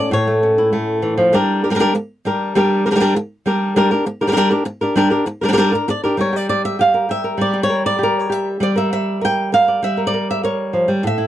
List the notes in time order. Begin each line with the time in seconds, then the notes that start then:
Already playing: C#4 A4 D5
0.11 A2 C#5
0.27 A3
0.43 C#4
0.58 E4
0.73 A3
1.02 E3
1.17 F3
1.33 G3 D4 G4 A#4
1.64 D4 G4 A#4
1.70 G3 D4 G4 A#4
1.75 G3 D4 G4 A#4
1.79 G3 D4 G4 A#4
1.95 muted nylon-string guitar stroke
2.25 G3 D4 G4 A#4
2.55 G3 D4 G4 A#4
2.86 G3 D4 G4 A#4
2.91 G3 D4 G4 A#4
2.96 G3 D4 G4 A#4
3.00 G3 D4 G4 A#4
3.16 muted nylon-string guitar stroke
3.46 G3 D4 G4 A#4
3.76 G3 D4 G4 A#4
3.91 D4 G4 A#4
4.06 muted nylon-string guitar stroke
4.21 D4 G4 A#4
4.27 G3 D4 G4 A#4
4.32 G3 D4 G4 A#4
4.37 G3 D4 G4 A#4
4.51 D4 G4 A#4
4.65 muted nylon-string guitar stroke
4.81 D4 G4 A#4
4.96 G3 D4 G4 A#4
5.10 D4 G4 A#4
5.26 muted nylon-string guitar stroke
5.41 G3 D4 G4 A#4
5.48 G3 D4 G4 A#4
5.53 G3 D4 G4 A#4
5.57 G3 D4 G4 A#4
5.72 D4 A#4
5.88 D5, muted nylon-string guitar stroke
6.04 D4 G4 A#4
6.17 G3 G4 A#4 C#5
6.33 G4 D5
6.49 D5
6.65 E5
6.79 G4 F5
6.94 A#4
7.09 G4 E5
7.24 A#4
7.38 G3 D5
7.53 G4
7.63 C#5
7.69 A#4
7.86 D5
7.99 G4
8.03 A#4
8.19 C#5
8.30 G4 E5
8.60 G3 D5
8.76 A#4 E5
8.93 E5
9.21 A#4 G5
9.52 A#4 F5
9.68 D5
9.82 G3 E5
9.97 A#4
10.07 D5
10.14 A#4
10.31 E5
10.43 A#4 C#5
10.73 F3
10.88 G3
11.03 A2 E5
11.18 E4